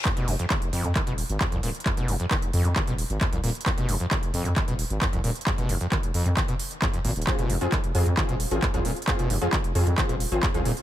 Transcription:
<<
  \new Staff \with { instrumentName = "Synth stab" } { \time 4/4 \tempo 4 = 133 r1 | r1 | r1 | r1 |
<c' f' aes'>16 r8 <c' f' aes'>16 r8 <c' f' aes'>16 r16 <c' f' aes'>16 r8 <c' f' aes'>16 r16 <c' f' aes'>16 r8 | <c' f' aes'>16 r8 <c' f' aes'>16 r8 <c' f' aes'>16 r16 <c' f' aes'>16 r8 <c' f' aes'>16 r16 <c' f' aes'>16 r8 | }
  \new Staff \with { instrumentName = "Acid bass" } { \clef bass \time 4/4 f,16 b,16 f,16 f,16 ees16 r16 f,16 ges,16 ees16 b,16 r8 f,16 f,16 bes,16 r16 | f,16 b,16 f,16 f,16 ees16 r16 f,16 ges,16 ees16 b,16 r8 f,16 f,16 bes,16 r16 | f,16 b,16 f,16 f,16 ees16 r16 f,16 ges,16 ees16 b,16 r8 f,16 f,16 bes,16 r16 | f,16 b,16 f,16 f,16 ees16 r16 f,16 ges,16 ees16 b,16 r8 f,16 f,16 bes,16 r16 |
f,16 b,16 f,16 f,16 ees16 r16 f,16 ges,16 ees16 b,16 r8 f,16 f,16 bes,16 r16 | f,16 b,16 f,16 f,16 ees16 r16 f,16 ges,16 ees16 b,16 r8 f,16 f,16 bes,16 r16 | }
  \new Staff \with { instrumentName = "FM bass" } { \clef bass \time 4/4 r16 f,,16 f,,16 r8 f,,16 f,16 f,16 r16 ees,,16 r16 aes,,16 r16 c,16 ees,,16 r16 | r16 f,,16 f,,16 r8 f,,16 f,16 f,16 r16 ees,,16 r16 aes,,16 r16 c,16 ees,,16 r16 | r16 f,,16 f,,16 r8 f,,16 f,16 f,16 r16 ees,,16 r16 aes,,16 r16 c,16 ees,,16 r16 | r16 f,,16 f,,16 r8 f,,16 f,16 f,16 r4. aes,,16 ees,,16 |
r16 f,,16 f,,16 r8 f,,16 f,16 f,16 r16 ees,,16 r16 aes,,16 r16 c,16 ees,,16 r16 | r16 f,,16 f,,16 r8 f,,16 f,16 f,16 r16 ees,,16 r16 aes,,16 r16 c,16 ees,,16 r16 | }
  \new DrumStaff \with { instrumentName = "Drums" } \drummode { \time 4/4 <hc hh bd>16 hh16 hho16 hh16 <hc hh bd>16 hh16 hho16 hh16 <hc hh bd>16 hh16 hho16 hh16 <hc hh bd>16 hh16 hho16 hh32 hh32 | <hc hh bd>16 hh16 hho16 hh16 <hc hh bd>16 hh16 hho16 hh16 <hc hh bd>16 hh16 hho16 hh16 <hc hh bd>16 hh16 hho16 hh32 hh32 | <hc hh bd>16 hh16 hho16 hh16 <hc hh bd>16 hh16 hho16 hh16 <hc hh bd>16 hh16 hho16 hh16 <hc hh bd>16 hh16 hho16 hh32 hh32 | <hc hh bd>16 hh16 hho16 hh16 <hc hh bd>16 hh16 hho16 hh16 <hc hh bd>16 hh16 hho16 hh16 <hc hh bd>16 hh16 hho16 hh32 hh32 |
<hc hh bd>16 hh16 hho16 hh16 <hc hh bd>16 hh16 hho16 hh16 <hc hh bd>16 hh16 hho16 hh16 <hc hh bd>16 hh16 hho16 hh32 hh32 | <hc hh bd>16 hh16 hho16 hh16 <hc hh bd>16 hh16 hho16 hh16 <hc hh bd>16 hh16 hho16 hh16 <hc hh bd>16 hh16 hho16 hh16 | }
>>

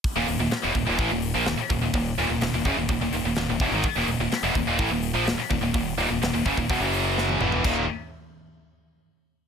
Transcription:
<<
  \new Staff \with { instrumentName = "Distorted electric guitar" } { \clef bass \time 4/4 \key ees \minor \tempo 4 = 126 r16 <ees, bes,>16 <ees, bes,>16 <ees, bes,>16 r16 <fes, ces>16 <ees, bes,>16 <ees, bes,>16 <a, fes>16 <ees, bes,>8 <bes, f>16 <ees, bes,>16 r16 <ees, bes,>16 <ees, bes,>16 | <ees, bes,>8 <ees, bes,>16 <ees, bes,>16 <ees, bes,>16 <ees, bes,>16 <ges, des>16 <ees, bes,>16 <ees, bes,>16 <ees, bes,>16 <ees, bes,>16 <ees, bes,>16 <ees, bes,>16 <ees, bes,>16 <fes, ces>16 <aes, ees>16 | r16 <ees, bes,>16 <ees, bes,>16 <ees, bes,>16 r16 <fes, ces>16 <ees, bes,>16 <ees, bes,>16 <a, fes>16 <ees, bes,>8 <bes, f>16 <ees, bes,>16 r16 <ees, bes,>16 <ees, bes,>16 | <ees, bes,>8 <ees, bes,>16 <ees, bes,>16 <ees, bes,>16 <ees, bes,>16 <ges, des>16 <ees, bes,>16 <fes, ces>16 <ges, des ges>4~ <ges, des ges>16 <e, b, e>8 |
<ees, bes, ees>8 r2. r8 | }
  \new Staff \with { instrumentName = "Distorted electric guitar" } { \clef bass \time 4/4 \key ees \minor r16 <ees, bes,>16 <ees, bes,>16 <ees, bes,>16 r16 <fes, ces>16 <ees, bes,>16 <ees, bes,>16 <a, fes>16 <ees, bes,>8 <bes, f>16 <ees, bes,>16 r16 <ees, bes,>16 <ees, bes,>16 | <ees, bes,>8 <ees, bes,>16 <ees, bes,>16 <ees, bes,>16 <ees, bes,>16 <ges, des>16 <ees, bes,>16 <ees, bes,>16 <ees, bes,>16 <ees, bes,>16 <ees, bes,>16 <ees, bes,>16 <ees, bes,>16 <fes, ces>16 <aes, ees>16 | r16 <ees, bes,>16 <ees, bes,>16 <ees, bes,>16 r16 <fes, ces>16 <ees, bes,>16 <ees, bes,>16 <a, fes>16 <ees, bes,>8 <bes, f>16 <ees, bes,>16 r16 <ees, bes,>16 <ees, bes,>16 | <ees, bes,>8 <ees, bes,>16 <ees, bes,>16 <ees, bes,>16 <ees, bes,>16 <ges, des>16 <ees, bes,>16 <fes, ces>16 <ges, des ges>4~ <ges, des ges>16 <e, b, e>8 |
<ees, bes, ees>8 r2. r8 | }
  \new Staff \with { instrumentName = "Overdriven electric guitar" } { \clef bass \time 4/4 \key ees \minor r16 <ees, bes,>16 <ees, bes,>16 <ees, bes,>16 r16 <fes, ces>16 <ees, bes,>16 <ees, bes,>16 <a, fes>16 <ees, bes,>8 <bes, f>16 <ees, bes,>16 r16 <ees, bes,>16 <ees, bes,>16 | <ees, bes,>8 <ees, bes,>16 <ees, bes,>16 <ees, bes,>16 <ees, bes,>16 <ges, des>16 <ees, bes,>16 <ees, bes,>16 <ees, bes,>16 <ees, bes,>16 <ees, bes,>16 <ees, bes,>16 <ees, bes,>16 <fes, ces>16 <aes, ees>16 | r16 <ees, bes,>16 <ees, bes,>16 <ees, bes,>16 r16 <fes, ces>16 <ees, bes,>16 <ees, bes,>16 <a, fes>16 <ees, bes,>8 <bes, f>16 <ees, bes,>16 r16 <ees, bes,>16 <ees, bes,>16 | <ees, bes,>8 <ees, bes,>16 <ees, bes,>16 <ees, bes,>16 <ees, bes,>16 <ges, des>16 <ees, bes,>16 <fes, ces>16 <ges, des ges>4~ <ges, des ges>16 <e, b, e>8 |
<ees, bes, ees>8 r2. r8 | }
  \new Staff \with { instrumentName = "Fingered electric bass" } { \clef bass \time 4/4 \key ees \minor r16 ees,,16 ees,,16 ees,,16 r16 fes,,16 ees,,16 ees,,16 a,,16 ees,,8 bes,,16 ees,,16 r16 ees,,16 ees,,16 | ees,,8 ees,,16 ees,,16 ees,,16 ees,,16 ges,,16 ees,,16 ees,,16 ees,,16 ees,,16 ees,,16 ees,,16 ees,,16 fes,,16 aes,,16 | r16 ees,,16 ees,,16 ees,,16 r16 fes,,16 ees,,16 ees,,16 a,,16 ees,,8 bes,,16 ees,,16 r16 ees,,16 ees,,16 | ees,,8 ees,,16 ees,,16 ees,,16 ees,,16 ges,,16 ees,,16 fes,,16 ges,,4~ ges,,16 e,,8 |
ees,,8 r2. r8 | }
  \new DrumStaff \with { instrumentName = "Drums" } \drummode { \time 4/4 <hho bd>8 hho8 <hho sn>8 <hho bd>8 <hho bd>8 hho8 <hho sn>8 <hho bd>8 | <hho bd>8 hho8 <hho sn>8 <hho bd>8 <hho bd>8 hho8 <hho sn>8 <hho bd>8 | <hho bd>8 hho8 <hho sn>8 <hho bd>8 <hho bd>8 hho8 <hho sn>8 <hho bd>8 | <hho bd>8 hho8 <hho sn>8 <hho bd>16 bd16 <hho bd>8 hho8 sn16 tommh16 toml16 tomfh16 |
<cymc bd>4 r4 r4 r4 | }
>>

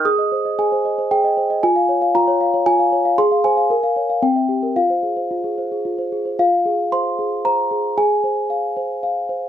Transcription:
\new Staff \with { instrumentName = "Celesta" } { \time 3/4 \key des \lydian \tempo 4 = 114 << { ees'''4 aes''4 g''4 | aes''4 bes''4 aes''4 | \key f \minor c'''8 aes''4. g''4 | f''2~ f''8 r8 |
f''4 c'''4 bes''4 | aes''2~ aes''8 r8 | } \\ { aes'16 ees''16 c''16 ees''16 aes'16 c''16 ees''16 c''16 aes'16 ees''16 c''16 ees''16 | f'16 f''16 des''16 f''16 f'16 des''16 f''16 des''16 f'16 f''16 des''16 f''16 | aes'16 f''16 c''16 f''16 bes'16 f''16 des''16 f''16 c'16 e''16 g'16 bes'16 | f'16 c''16 aes'16 c''16 f'16 aes'16 c''16 aes'16 f'16 c''16 aes'16 c''16 |
f'8 aes'8 c''8 aes'8 c''8 aes'8 | aes'8 c''8 f''8 c''8 f''8 c''8 | } >> }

